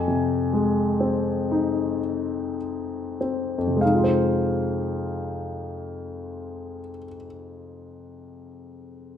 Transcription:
Already playing: F2 G#5
0.08 C3
0.53 G#3
1.00 C4
1.52 D#4
3.21 C4
3.58 F2
3.67 C3
3.76 G#3
3.81 D#4 F5
3.94 F4
4.04 C5

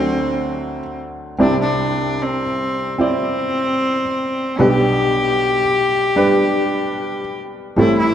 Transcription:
Already playing: D2 D3 F#3 C4 D4 C5
1.39 C2 C3 C4 D4 E4 D5
1.61 D4
2.22 C4
2.98 C4 E4 D5
4.59 B1 B2 G3 D4 G4 B4
6.16 G3 D4 B4
7.76 A1 A2 G3 C4 E4 A4
7.98 E4

